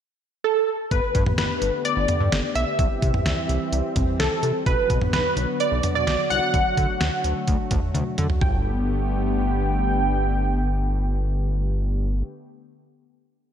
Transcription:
0.44 0.93 A4 medium
0.91 1.01 G1 loud
0.91 2.77 D3 medium
0.91 2.77 A3 medium
0.91 2.77 B3 medium
0.91 4.63 G4 medium
0.91 1.35 B4 medium
0.91 kick loud
0.91 closed hi-hat medium
1.15 1.24 G2 loud
1.15 kick medium
1.15 closed hi-hat medium
1.26 mid tom medium
1.38 1.48 G1 loud
1.38 1.82 B4 medium
1.38 snare loud
1.38 closed hi-hat medium
1.62 1.71 G1 medium
1.62 closed hi-hat medium
1.85 2.58 D5 loud
1.85 closed hi-hat medium
1.97 2.06 G1 medium
2.08 closed hi-hat medium
2.08 mid tom medium
2.20 2.30 G2 medium
2.32 2.41 G1 loud
2.32 snare loud
2.32 closed hi-hat medium
2.55 2.65 B1 loud
2.55 4.24 E5 loud
2.55 closed hi-hat medium
2.79 2.88 C2 loud
2.79 4.64 E3 medium
2.79 4.64 G3 medium
2.79 4.64 C4 medium
2.79 kick loud
2.79 closed hi-hat medium
3.02 3.12 C3 medium
3.02 kick medium
3.02 closed hi-hat medium
3.14 mid tom medium
3.26 3.35 C2 loud
3.26 snare loud
3.26 closed hi-hat medium
3.49 3.58 C2 loud
3.49 closed hi-hat medium
3.72 3.82 C2 loud
3.72 closed hi-hat medium
3.96 4.05 C2 loud
3.96 kick medium
3.96 closed hi-hat medium
3.96 mid tom medium
4.19 4.29 C2 loud
4.19 4.63 A4 medium
4.19 snare loud
4.19 closed hi-hat medium
4.43 4.52 C3 medium
4.43 closed hi-hat medium
4.66 4.76 B1 loud
4.66 8.38 D3 medium
4.66 8.38 F#3 medium
4.66 6.52 B3 medium
4.66 8.38 F#4 medium
4.66 5.12 B4 loud
4.66 kick loud
4.66 closed hi-hat medium
4.90 4.99 B2 loud
4.90 kick medium
4.90 closed hi-hat medium
5.02 mid tom medium
5.13 5.22 B1 loud
5.13 5.62 B4 loud
5.13 snare loud
5.13 closed hi-hat medium
5.37 5.46 B1 medium
5.37 closed hi-hat medium
5.60 5.94 D5 loud
5.60 closed hi-hat medium
5.72 5.81 B1 medium
5.83 closed hi-hat medium
5.83 mid tom medium
5.95 6.04 B2 loud
5.95 6.06 D5 loud
6.07 6.16 B1 loud
6.07 6.29 D5 loud
6.07 snare loud
6.07 closed hi-hat medium
6.30 6.40 C2 medium
6.30 7.90 F#5 loud
6.30 closed hi-hat medium
6.54 6.63 D2 medium
6.54 8.40 A3 medium
6.54 kick loud
6.54 closed hi-hat medium
6.77 6.87 D3 loud
6.77 kick medium
6.77 closed hi-hat medium
7.01 7.10 D2 loud
7.01 snare loud
7.01 closed hi-hat medium
7.24 7.34 D2 loud
7.24 closed hi-hat medium
7.48 7.57 D2 loud
7.48 kick medium
7.48 closed hi-hat medium
7.71 7.80 D2 loud
7.71 kick medium
7.71 closed hi-hat medium
7.71 mid tom medium
7.95 8.04 D2 loud
7.95 closed hi-hat medium
7.95 high tom medium
8.18 8.27 D3 loud
8.18 closed hi-hat medium
8.18 mid tom medium
8.30 floor tom medium
8.41 12.23 G1 medium
8.41 12.23 D3 medium
8.41 12.23 A3 medium
8.41 12.23 B3 medium
8.41 12.23 G4 medium
8.41 12.23 G5 loud
8.41 kick loud
8.41 floor tom loud

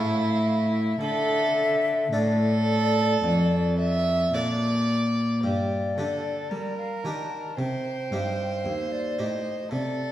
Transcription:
0.00 0.97 A2 medium
0.00 0.99 A2 medium
0.00 0.97 C#4 soft
0.00 1.00 E4 medium
0.00 0.97 A4 soft
0.07 0.16 E5 medium
0.15 0.24 F5 medium
0.22 0.32 E5 medium
0.30 0.42 F5 medium
0.40 0.49 E5 medium
0.48 0.58 F5 medium
0.56 1.00 E5 medium
1.01 2.09 D3 medium
1.01 2.11 D3 medium
1.01 2.00 A4 medium
1.01 2.15 E5 loud
2.13 3.21 A2 medium
2.13 3.19 A2 medium
2.13 2.93 D4 soft
2.13 3.74 A4 medium
2.13 2.93 A4 soft
2.13 4.34 D5 medium
3.23 4.31 F2 medium
3.23 4.30 F2 medium
3.79 4.35 E5 medium
4.33 5.41 A#2 medium
4.33 5.40 A#2 medium
4.33 5.13 D4 soft
4.33 5.14 A4 soft
4.33 5.43 D5 medium
5.43 5.93 G2 soft
5.43 5.94 G2 medium
5.43 5.93 G4 medium
5.43 6.74 D5 medium
5.97 6.47 D3 medium
5.97 6.47 D3 soft
5.97 6.75 D4 soft
5.97 6.76 G4 soft
5.97 6.52 A4 medium
6.51 7.01 G3 medium
6.51 7.01 G3 soft
6.51 7.58 A#4 medium
6.78 7.04 F5 medium
7.04 7.54 D#3 medium
7.04 7.54 D#3 soft
7.04 7.44 D4 soft
7.04 7.44 G4 soft
7.04 7.59 A5 medium
7.58 8.08 C3 medium
7.58 8.08 C3 soft
7.58 9.68 C5 medium
7.58 8.65 G5 medium
8.11 8.61 G2 medium
8.11 8.61 G2 soft
8.11 8.89 D#4 soft
8.11 8.90 G4 soft
8.64 9.14 D#2 medium
8.64 9.15 D#2 soft
8.64 8.93 F5 medium
8.92 9.21 D5 medium
9.19 9.68 A2 soft
9.19 9.68 A2 medium
9.19 9.57 D#4 soft
9.19 9.57 G4 soft
9.19 9.71 D#5 medium
9.71 10.12 C3 soft
9.71 10.12 C3 medium
9.71 10.12 A4 medium
9.71 10.12 D5 medium

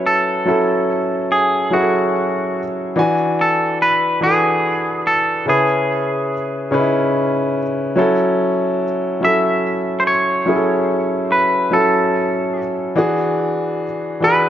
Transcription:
0.00 0.45 F#3 medium
0.00 0.47 C#4 medium
0.00 0.48 E4 medium
0.00 0.10 B4 medium
0.06 1.31 A4 medium
0.45 1.33 F#3 medium
0.45 1.34 C#4 medium
0.45 1.34 E4 medium
0.45 1.35 A4 medium
1.32 1.74 G#4 medium
1.71 2.58 F#3 medium
1.71 2.59 C#4 medium
1.71 2.59 E4 medium
1.71 2.62 F#4 medium
1.71 1.79 G#4 medium
1.80 2.63 A4 medium
2.96 3.83 E3 medium
2.96 3.84 D4 medium
2.96 3.85 F#4 medium
2.96 3.85 G#5 medium
3.41 3.78 A4 medium
3.82 4.23 B4 medium
4.21 5.08 E3 medium
4.21 5.09 D4 medium
4.21 5.10 F#4 medium
4.21 5.07 G#4 medium
4.21 4.29 A4 medium
4.30 5.13 B4 medium
5.07 5.49 A4 medium
5.46 6.33 C#3 medium
5.46 6.34 C#4 medium
5.46 6.34 E4 medium
5.46 7.11 G#4 medium
5.46 6.35 B4 medium
6.71 7.58 C#3 medium
6.71 7.59 C#4 medium
6.71 6.79 D#4 soft
6.71 7.60 B4 medium
6.79 7.63 E4 medium
7.96 8.83 F#3 medium
7.96 8.84 C#4 medium
7.96 8.85 E4 medium
7.96 8.85 A4 medium
9.21 10.08 F#3 medium
9.21 10.09 C#4 medium
9.21 10.09 E4 medium
9.21 10.10 A4 medium
9.21 9.99 E5 medium
10.00 10.06 C5 medium
10.07 11.31 C#5 medium
10.46 11.33 F#3 medium
10.46 11.34 C#4 medium
10.46 11.35 E4 medium
10.46 10.54 G#4 medium
10.56 11.38 A4 medium
11.32 11.74 B4 medium
11.71 12.58 F#3 medium
11.71 12.59 C#4 medium
11.71 12.59 E4 medium
11.71 12.62 A4 medium
11.71 12.60 A4 medium
12.96 13.83 E3 medium
12.96 13.84 D4 medium
12.96 13.84 F#4 medium
12.96 13.85 G#4 medium
14.20 14.49 E3 medium
14.20 14.49 D4 medium
14.20 14.49 F#4 medium
14.20 14.49 G#4 medium
14.20 14.49 B4 medium

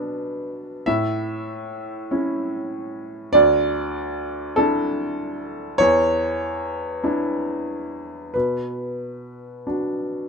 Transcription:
0.00 0.82 B2 medium
0.00 0.82 B3 soft
0.00 0.82 D4 soft
0.00 0.87 B4 medium
0.86 3.31 A2 medium
0.86 3.34 E5 medium
2.11 3.31 C#4 soft
2.11 3.31 E4 soft
3.33 5.76 D2 medium
3.33 4.56 D5 loud
4.56 5.76 D4 medium
4.56 5.76 E4 medium
4.56 5.79 A4 medium
5.78 8.30 E2 medium
5.78 8.33 C#5 loud
7.04 8.30 D4 soft
7.04 8.30 E4 medium
8.34 10.29 B2 soft
8.34 9.65 B4 medium
9.67 10.29 D4 soft
9.67 10.29 F#4 soft

